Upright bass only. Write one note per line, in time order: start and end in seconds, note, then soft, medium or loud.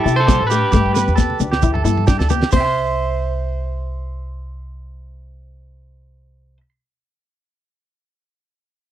0.05 0.37 C3 medium
0.40 0.61 A2 medium
0.74 1.05 G2 medium
1.08 1.38 E2 medium
1.40 1.82 D2 medium
1.84 2.17 G2 medium
2.19 2.40 D2 medium
2.53 6.57 C2 medium